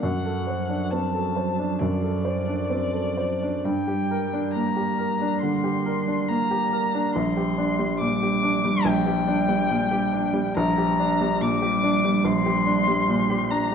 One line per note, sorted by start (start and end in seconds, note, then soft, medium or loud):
0.02 1.77 F#2 medium
0.02 3.60 F#3 medium
0.02 0.92 F#5 medium
0.25 0.61 A4 soft
0.47 0.83 C5 soft
0.69 1.05 D4 soft
0.91 1.28 C4 soft
0.91 1.81 A5 medium
1.15 1.50 A4 soft
1.36 1.72 C5 soft
1.59 1.94 D4 soft
1.79 3.61 F#2 soft
1.79 3.66 D5 medium
2.04 2.38 A4 soft
2.25 2.60 C5 soft
2.48 2.84 D4 soft
2.70 3.07 C4 soft
2.93 3.32 A4 soft
3.17 3.56 C5 soft
3.43 3.65 D4 soft
3.64 5.38 G2 medium
3.64 7.10 G3 medium
3.64 4.53 G5 medium
3.88 4.24 G4 soft
4.11 4.46 A#4 soft
4.33 4.68 D4 medium
4.54 4.90 A#3 medium
4.54 5.40 A#5 medium
4.76 5.11 G4 soft
4.98 5.33 A#4 soft
5.21 5.56 D4 medium
5.41 5.77 D3 medium
5.41 6.30 C6 medium
5.64 5.99 G4 medium
5.86 6.20 A#4 medium
6.07 6.42 D4 medium
6.28 6.64 A#3 medium
6.28 7.14 A#5 medium
6.51 6.85 G4 medium
6.73 7.07 A#4 medium
6.94 7.15 D4 medium
7.14 8.82 A#1 medium
7.14 10.52 G3 medium
7.14 7.99 C6 loud
7.37 7.71 G4 medium
7.58 7.92 D4 medium
7.79 8.13 G3 medium
8.00 8.34 A#2 medium
8.00 8.87 D6 loud
8.22 8.56 G4 medium
8.43 8.77 D4 medium
8.65 8.99 G3 medium
8.85 10.52 A#1 medium
8.85 10.56 G5 loud
9.06 9.41 G4 medium
9.27 9.62 D4 medium
9.49 9.83 G3 medium
9.70 10.05 A#2 medium
9.91 10.26 G4 medium
10.13 10.47 D4 medium
10.34 10.56 G3 medium
10.55 12.22 A#1 medium
10.55 13.75 G3 medium
10.55 11.43 A#5 loud
10.78 11.12 G4 medium
10.99 11.33 D4 medium
11.21 11.54 G3 medium
11.41 11.75 A#2 medium
11.41 12.27 D6 loud
11.62 11.96 G4 medium
11.83 12.17 D4 medium
12.04 12.38 G3 medium
12.25 13.75 A#1 medium
12.25 13.52 C6 loud
12.46 12.79 G4 medium
12.67 13.00 D4 medium
12.88 13.21 G3 medium
13.08 13.42 A#2 medium
13.30 13.64 G4 medium
13.50 13.75 D4 medium
13.50 13.75 A#5 loud